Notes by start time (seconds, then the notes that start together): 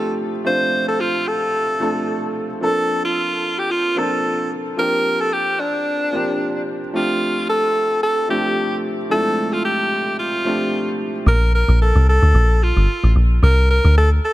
Already playing: F3 A3 C4 D4 G4 A4
0.44 F3 A3 C4 D4 F4 C5
0.88 A4
1.00 F4
1.28 A4
1.79 F3 A3 C4 D4 A4
2.61 F3 A#3 C4 D4 A4
3.05 F4
3.59 G4
3.71 F4
3.95 F3 A#3 C4 D4 A4
4.77 F3 A#3 C4 D4 G4 A#4
5.21 A4
5.33 G4
5.60 D4
6.12 F3 A#3 C4 D4 G4
6.93 F3 A3 C4 D4 F4 G4
7.49 A4
8.03 A4
8.29 F3 A3 C4 D4 G4
9.09 F3 G#3 C4 D4 E4 A4
9.16 A3
9.53 F4
9.65 G4
10.19 F4
10.44 F3 A3 C4 D4 G4
11.26 A#1 A#4
11.55 A#4
11.68 A#1
11.82 A4
11.95 C2
12.09 A4
12.22 D2
12.35 A#1
12.63 F4
12.77 G1
13.04 A1
13.16 A#1
13.43 C2 A#4
13.71 A#4
13.84 D2
13.98 A4
14.25 A4